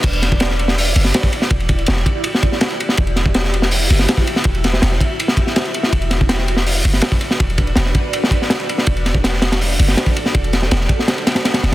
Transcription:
0.03 0.94 E1 loud
0.03 5.89 E4 medium
0.03 11.75 F#4 medium
0.03 5.89 G4 medium
0.03 2.95 D5 medium
0.03 kick loud
0.03 crash medium
0.03 ride loud
0.13 ride soft
0.22 snare soft
0.22 ride medium
0.32 kick loud
0.40 snare loud
0.40 ride medium
0.50 snare soft
0.59 ride medium
0.68 snare medium
0.78 open hi-hat medium
0.96 1.12 F#1 medium
0.96 ride medium
1.04 snare soft
1.14 snare loud
1.14 ride medium
1.23 kick medium
1.33 ride medium
1.42 snare soft
1.50 1.86 E1 loud
1.50 kick loud
1.50 ride medium
1.60 ride soft
1.69 kick loud
1.69 ride medium
1.78 ride soft
1.86 2.05 E1 medium
1.86 snare loud
1.86 ride medium
1.96 snare soft
2.06 kick medium
2.06 ride medium
2.24 ride medium
2.35 snare soft
2.43 kick medium
2.43 ride medium
2.52 snare soft
2.61 snare loud
2.61 ride medium
2.70 ride soft
2.80 ride medium
2.89 snare soft
2.97 3.89 E1 loud
2.97 5.90 E5 medium
2.97 kick loud
2.97 ride medium
3.07 ride soft
3.16 snare soft
3.16 ride medium
3.26 kick medium
3.34 snare loud
3.34 ride medium
3.44 snare soft
3.54 ride medium
3.62 snare medium
3.71 open hi-hat medium
3.90 4.07 F#1 medium
3.90 ride medium
3.99 snare soft
4.08 snare loud
4.08 ride medium
4.17 kick medium
4.27 ride medium
4.36 snare soft
4.44 4.81 E1 loud
4.44 kick loud
4.44 ride medium
4.55 ride soft
4.64 snare medium
4.64 ride medium
4.73 snare medium
4.82 4.99 E1 medium
4.82 snare loud
4.82 ride loud
4.92 snare soft
5.01 kick medium
5.01 ride medium
5.20 ride medium
5.28 snare medium
5.37 kick loud
5.37 ride medium
5.47 snare soft
5.56 snare loud
5.56 ride medium
5.65 ride soft
5.74 ride medium
5.83 snare soft
5.93 6.83 E1 loud
5.93 11.75 D4 medium
5.93 8.85 B4 medium
5.93 11.75 D5 medium
5.93 kick loud
5.93 ride medium
6.02 ride soft
6.11 snare soft
6.11 ride medium
6.21 kick medium
6.29 snare loud
6.29 ride medium
6.39 snare soft
6.48 ride medium
6.57 snare soft
6.66 open hi-hat medium
6.85 7.01 F#1 medium
6.85 ride medium
6.93 snare soft
7.01 snare loud
7.01 ride medium
7.12 kick loud
7.21 ride medium
7.31 snare soft
7.40 7.75 E1 loud
7.40 kick loud
7.40 ride medium
7.50 ride soft
7.58 kick loud
7.58 ride medium
7.67 ride soft
7.76 7.93 E1 medium
7.76 snare loud
7.76 ride medium
7.85 snare soft
7.95 kick medium
7.95 ride medium
8.13 ride medium
8.24 snare medium
8.31 kick medium
8.31 ride medium
8.42 snare soft
8.50 snare loud
8.50 ride medium
8.60 ride soft
8.69 ride medium
8.78 snare soft
8.86 9.78 E1 loud
8.86 11.75 A4 medium
8.86 kick loud
8.86 ride medium
8.97 ride soft
9.06 snare soft
9.06 ride medium
9.15 kick medium
9.24 snare loud
9.24 ride medium
9.33 snare soft
9.42 snare loud
9.42 ride medium
9.52 snare loud
9.52 ride medium
9.61 open hi-hat medium
9.79 9.96 F#1 medium
9.79 ride medium
9.88 snare soft
9.97 snare loud
9.97 ride loud
10.06 kick loud
10.16 ride medium
10.26 snare soft
10.35 10.70 E1 loud
10.35 kick loud
10.35 ride medium
10.44 ride soft
10.53 snare medium
10.53 ride medium
10.62 snare soft
10.71 10.88 E1 medium
10.71 snare loud
10.71 ride medium
10.81 snare soft
10.89 kick medium
10.89 ride medium
10.99 snare soft
11.08 snare loud
11.08 ride medium
11.18 ride soft
11.27 snare loud
11.27 ride medium
11.35 snare loud
11.35 ride medium
11.45 snare loud
11.45 ride medium
11.54 snare loud
11.54 ride medium
11.63 11.72 E1 medium
11.63 snare medium
11.63 ride medium

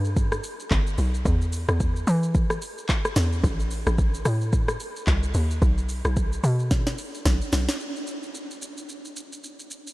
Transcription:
0.00 0.41 G2 loud
0.05 shaker medium
0.16 kick loud
0.16 shaker medium
0.32 cross-stick medium
0.32 shaker medium
0.44 open hi-hat medium
0.44 shaker loud
0.60 shaker medium
0.71 0.97 G1 loud
0.71 kick medium
0.71 clap loud
0.71 shaker medium
0.87 shaker medium
0.98 1.24 B1 medium
0.98 open hi-hat medium
0.98 shaker loud
1.14 shaker medium
1.25 1.66 E2 loud
1.25 kick loud
1.25 shaker medium
1.41 shaker medium
1.52 open hi-hat medium
1.52 shaker loud
1.68 2.05 E2 loud
1.68 cross-stick loud
1.68 shaker medium
1.80 kick loud
1.80 shaker medium
1.96 shaker medium
2.07 2.59 E3 loud
2.07 open hi-hat medium
2.07 shaker loud
2.23 shaker medium
2.34 kick loud
2.34 shaker medium
2.50 cross-stick medium
2.50 shaker medium
2.62 open hi-hat medium
2.62 shaker loud
2.78 shaker medium
2.89 kick medium
2.89 clap loud
2.89 shaker medium
3.05 cross-stick medium
3.05 shaker medium
3.16 3.42 E2 medium
3.16 snare medium
3.16 open hi-hat medium
3.16 shaker loud
3.32 shaker medium
3.44 3.84 A1 loud
3.44 kick loud
3.44 shaker medium
3.60 shaker medium
3.71 open hi-hat medium
3.71 shaker loud
3.87 4.23 A1 loud
3.87 cross-stick loud
3.87 shaker medium
3.98 kick loud
3.98 shaker medium
4.14 shaker medium
4.25 4.77 A2 loud
4.25 cross-stick loud
4.25 open hi-hat medium
4.25 shaker loud
4.41 shaker medium
4.53 kick loud
4.53 shaker medium
4.68 cross-stick loud
4.68 shaker medium
4.80 open hi-hat medium
4.80 shaker medium
4.96 shaker medium
5.07 5.33 C2 loud
5.07 kick medium
5.07 clap medium
5.07 shaker medium
5.23 shaker medium
5.34 5.60 D#2 medium
5.34 open hi-hat medium
5.34 shaker medium
5.51 shaker medium
5.62 6.02 B1 loud
5.62 kick loud
5.62 shaker medium
5.78 shaker medium
5.89 open hi-hat medium
5.89 shaker loud
6.05 6.41 B1 loud
6.05 cross-stick loud
6.05 shaker medium
6.16 kick loud
6.16 shaker medium
6.32 shaker medium
6.44 6.95 B2 loud
6.44 open hi-hat medium
6.44 shaker loud
6.59 shaker medium
6.71 kick loud
6.71 snare medium
6.71 shaker medium
6.87 snare medium
6.87 shaker medium
6.98 open hi-hat medium
6.98 shaker medium
7.14 shaker medium
7.25 7.40 B1 loud
7.25 kick medium
7.25 snare medium
7.25 shaker medium
7.41 shaker medium
7.52 7.68 B1 medium
7.52 snare loud
7.52 open hi-hat medium
7.52 shaker medium
7.69 snare loud
7.69 shaker medium
7.80 shaker medium
7.96 shaker soft
8.07 shaker medium
8.23 shaker soft
8.35 shaker medium
8.51 shaker medium
8.62 shaker loud
8.77 shaker soft
8.89 shaker medium
9.05 shaker medium
9.16 shaker medium
9.32 shaker medium
9.44 shaker medium
9.59 shaker medium
9.71 shaker medium
9.87 shaker medium

